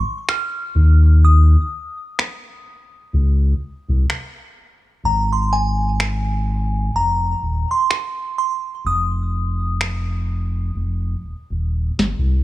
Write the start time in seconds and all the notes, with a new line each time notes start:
Already playing: C#6
0.29 F6, finger snap
0.75 D#2
1.25 D#6
2.19 finger snap
3.13 C#2
3.88 C2
4.10 finger snap
5.04 G#1 A#5
5.33 C6
5.53 G#5
6.00 finger snap
6.94 F1 A#5
7.42 D#1
7.71 C6
7.91 finger snap
8.38 C6
8.84 F1 D#6
9.81 finger snap
10.75 F1
11.23 D#1
11.50 D#1
11.98 G1, snare
12.18 C2